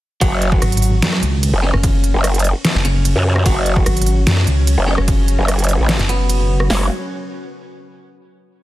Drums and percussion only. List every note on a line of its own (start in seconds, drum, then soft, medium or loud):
0.21 kick loud
0.21 closed hi-hat medium
0.21 ride medium
0.42 closed hi-hat medium
0.52 kick loud
0.62 cross-stick medium
0.62 closed hi-hat medium
0.62 ride soft
0.72 closed hi-hat soft
0.77 closed hi-hat medium
0.82 open hi-hat loud
1.02 snare loud
1.02 closed hi-hat medium
1.02 ride medium
1.13 cross-stick medium
1.23 closed hi-hat medium
1.43 closed hi-hat medium
1.43 ride soft
1.74 cross-stick medium
1.83 kick loud
1.83 closed hi-hat medium
1.83 ride medium
2.04 closed hi-hat medium
2.24 cross-stick medium
2.24 closed hi-hat medium
2.24 ride soft
2.34 closed hi-hat soft
2.39 closed hi-hat medium
2.44 open hi-hat medium
2.65 snare loud
2.65 closed hi-hat medium
2.65 ride medium
2.85 closed hi-hat medium
3.05 closed hi-hat medium
3.05 ride soft
3.36 cross-stick medium
3.46 kick loud
3.46 closed hi-hat medium
3.46 ride medium
3.66 closed hi-hat medium
3.76 kick loud
3.86 cross-stick medium
3.86 closed hi-hat medium
3.86 ride soft
3.97 closed hi-hat medium
4.02 closed hi-hat medium
4.06 open hi-hat medium
4.27 snare loud
4.27 closed hi-hat medium
4.27 ride medium
4.37 cross-stick soft
4.47 closed hi-hat medium
4.67 closed hi-hat medium
4.67 ride soft
4.98 cross-stick medium
5.08 kick loud
5.08 closed hi-hat medium
5.08 ride medium
5.28 closed hi-hat medium
5.48 cross-stick medium
5.48 closed hi-hat medium
5.48 ride soft
5.59 closed hi-hat soft
5.64 closed hi-hat medium
5.69 open hi-hat medium
5.89 snare loud
5.89 closed hi-hat medium
5.89 ride medium
5.99 closed hi-hat soft
6.09 closed hi-hat medium
6.29 closed hi-hat medium
6.29 ride soft
6.60 cross-stick medium
6.70 snare loud
6.70 open hi-hat medium